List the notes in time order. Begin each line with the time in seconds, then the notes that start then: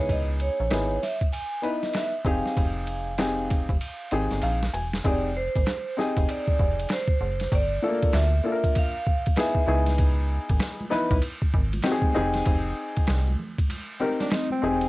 Already playing: C#2 B3 D#4 E4 G#4 C#5
0.09 D#5, kick, ride
0.40 C#5, ride
0.60 A#1
0.70 G#1 B3 D#4 E4 G#4, snare, hi-hat pedal, ride
1.03 E5, snare, ride
1.21 kick, ride
1.33 G#5, ride
1.62 B3 D#4 E4 B4 D#5, ride
1.83 snare, ride
1.94 E5, snare, hi-hat pedal, ride
2.24 F1 C4 D#4 G4 G#4 F5, kick, ride
2.46 snare
2.57 F1, kick, ride
2.87 ride
3.18 C4 D#4 G4 G#4, snare, hi-hat pedal, ride
3.50 kick, snare, ride
3.69 F1, kick, ride
3.81 ride
4.11 G#1 C4 D#4 G4 G#4, ride
4.31 G1, snare, ride
4.42 A#1 F5, hi-hat pedal, ride
4.63 snare
4.74 E1 G#5, ride
4.94 snare
5.04 F1 C4 D#4 G4 G#4 D5, kick, ride
5.37 C5
5.56 G#1, kick, ride
5.66 snare, hi-hat pedal, ride
5.97 C4 D#4 G4 G#4 D#5, snare
6.17 F1, kick, ride
6.29 D5, ride
6.48 kick
6.60 F1, kick
6.80 ride
6.89 C5, snare, hi-hat pedal, ride
7.08 kick
7.21 F#1
7.40 snare, ride
7.52 G1 D5, kick, ride
7.82 A3 D4 F4 A4
7.88 A#3
8.02 kick, ride
8.13 D2 E5, snare, hi-hat pedal, ride
8.44 A#3 D4 F4 A4
8.52 A#4
8.64 kick, ride
8.75 F5, kick, ride
9.07 kick
9.26 kick, ride
9.36 B3 D#4 E4 G#4 E5, snare, hi-hat pedal, ride
9.55 kick
9.66 C#2 B3 D#4 E4 G#4
9.86 snare, ride
9.98 kick, ride, shaker
10.19 shaker
10.30 shaker
10.49 G#1, kick, ride, shaker
10.60 snare, hi-hat pedal, ride, shaker
10.81 high conga, shaker
10.90 B3 D#4 E4 B4, snare, low conga, shaker
11.11 B1, kick, ride, shaker
11.22 ride, shaker
11.41 kick, shaker
11.53 G#1, kick, shaker
11.73 ride, high conga, shaker
11.82 C4 D#4 F#4 G4, snare, hi-hat pedal, ride, low conga, shaker
11.92 G#4
12.02 kick, high conga, shaker
12.14 F1 C4 D#4 G4 G#4, low conga, shaker
12.34 snare, ride, shaker
12.45 F1, kick, ride, shaker
12.66 shaker
12.77 shaker
12.96 kick, ride, shaker
13.07 C2, snare, hi-hat pedal, ride, shaker
13.28 high conga, shaker
13.39 low conga, shaker
13.58 kick, ride, shaker
13.69 ride, high conga, shaker
13.89 shaker
14.00 C4 D#4 G4 A#4, high conga, shaker
14.20 D4, snare, ride, high conga, shaker
14.30 C4 D#4, snare, hi-hat pedal, ride, low conga, shaker
14.50 C4, high conga, shaker
14.62 E1 C4 D#4 G4 G#4, low conga, shaker
14.81 ride, shaker